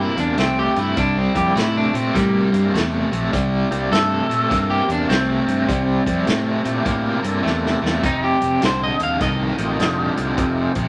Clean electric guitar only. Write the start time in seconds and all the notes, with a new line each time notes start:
0.00 E4
0.20 D4
0.40 C4
0.59 G4
0.79 E4
0.98 D4
1.18 C4
1.37 G4
1.56 E4
1.77 D4
1.96 C4
2.15 G3
3.93 A4
4.70 G4
4.92 D4
5.10 C4
8.06 D#4
8.24 G4
8.65 C5
8.84 D#5
9.03 F5
9.22 D#5